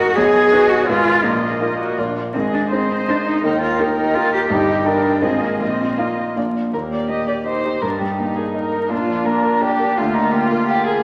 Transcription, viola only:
0, 0, Header, 1, 2, 480
1, 0, Start_track
1, 0, Key_signature, -3, "major"
1, 0, Tempo, 362538
1, 205, Time_signature, 3, 2, 24, 8
1, 6930, Tempo, 372208
1, 9810, Tempo, 359281
1, 14570, End_track
2, 0, Start_track
2, 0, Title_t, "Viola"
2, 0, Program_c, 0, 41
2, 0, Note_on_c, 0, 70, 83
2, 192, Note_off_c, 0, 70, 0
2, 200, Note_on_c, 0, 68, 94
2, 664, Note_off_c, 0, 68, 0
2, 676, Note_on_c, 0, 66, 93
2, 1144, Note_off_c, 0, 66, 0
2, 1158, Note_on_c, 0, 68, 86
2, 1630, Note_off_c, 0, 68, 0
2, 1655, Note_on_c, 0, 65, 62
2, 2072, Note_off_c, 0, 65, 0
2, 2150, Note_on_c, 0, 65, 65
2, 2363, Note_off_c, 0, 65, 0
2, 2379, Note_on_c, 0, 66, 61
2, 2628, Note_on_c, 0, 65, 60
2, 2648, Note_off_c, 0, 66, 0
2, 2864, Note_off_c, 0, 65, 0
2, 2879, Note_on_c, 0, 65, 46
2, 2971, Note_off_c, 0, 65, 0
2, 3111, Note_on_c, 0, 68, 72
2, 3554, Note_off_c, 0, 68, 0
2, 3590, Note_on_c, 0, 72, 78
2, 4529, Note_off_c, 0, 72, 0
2, 4549, Note_on_c, 0, 70, 79
2, 5946, Note_off_c, 0, 70, 0
2, 5968, Note_on_c, 0, 67, 83
2, 6434, Note_off_c, 0, 67, 0
2, 6453, Note_on_c, 0, 70, 75
2, 6923, Note_off_c, 0, 70, 0
2, 6931, Note_on_c, 0, 68, 68
2, 7397, Note_on_c, 0, 65, 56
2, 7417, Note_off_c, 0, 68, 0
2, 8620, Note_off_c, 0, 65, 0
2, 8874, Note_on_c, 0, 67, 44
2, 10292, Note_on_c, 0, 63, 55
2, 10312, Note_off_c, 0, 67, 0
2, 11722, Note_off_c, 0, 63, 0
2, 11730, Note_on_c, 0, 62, 57
2, 13161, Note_on_c, 0, 58, 67
2, 13181, Note_off_c, 0, 62, 0
2, 14570, Note_off_c, 0, 58, 0
2, 14570, End_track
0, 0, End_of_file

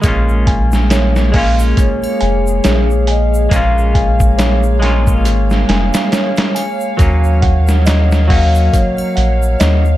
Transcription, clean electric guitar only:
0, 0, Header, 1, 2, 480
1, 0, Start_track
1, 0, Key_signature, -5, "minor"
1, 0, Tempo, 869565
1, 20, Time_signature, 4, 2, 24, 8
1, 5505, End_track
2, 0, Start_track
2, 0, Title_t, "Clean electric guitar"
2, 0, Program_c, 0, 27
2, 9, Note_on_c, 0, 56, 85
2, 20, Note_on_c, 0, 58, 79
2, 32, Note_on_c, 0, 61, 78
2, 44, Note_on_c, 0, 65, 94
2, 710, Note_off_c, 0, 56, 0
2, 716, Note_off_c, 0, 58, 0
2, 722, Note_off_c, 0, 61, 0
2, 728, Note_off_c, 0, 65, 0
2, 728, Note_on_c, 0, 56, 92
2, 740, Note_on_c, 0, 58, 84
2, 751, Note_on_c, 0, 61, 85
2, 763, Note_on_c, 0, 65, 100
2, 1910, Note_off_c, 0, 56, 0
2, 1916, Note_off_c, 0, 58, 0
2, 1922, Note_off_c, 0, 61, 0
2, 1928, Note_off_c, 0, 65, 0
2, 1930, Note_on_c, 0, 56, 84
2, 1940, Note_on_c, 0, 58, 82
2, 1953, Note_on_c, 0, 61, 80
2, 1966, Note_on_c, 0, 65, 98
2, 2631, Note_off_c, 0, 56, 0
2, 2636, Note_off_c, 0, 58, 0
2, 2642, Note_off_c, 0, 61, 0
2, 2648, Note_on_c, 0, 56, 94
2, 2649, Note_off_c, 0, 65, 0
2, 2659, Note_on_c, 0, 58, 86
2, 2670, Note_on_c, 0, 61, 88
2, 2683, Note_on_c, 0, 65, 102
2, 3830, Note_off_c, 0, 56, 0
2, 3835, Note_off_c, 0, 58, 0
2, 3841, Note_off_c, 0, 61, 0
2, 3847, Note_off_c, 0, 65, 0
2, 3849, Note_on_c, 0, 54, 93
2, 3862, Note_on_c, 0, 58, 82
2, 3873, Note_on_c, 0, 61, 81
2, 4550, Note_off_c, 0, 54, 0
2, 4557, Note_off_c, 0, 58, 0
2, 4563, Note_off_c, 0, 61, 0
2, 4569, Note_on_c, 0, 54, 93
2, 4580, Note_on_c, 0, 58, 88
2, 4591, Note_on_c, 0, 61, 84
2, 5505, Note_off_c, 0, 54, 0
2, 5505, Note_off_c, 0, 58, 0
2, 5505, Note_off_c, 0, 61, 0
2, 5505, End_track
0, 0, End_of_file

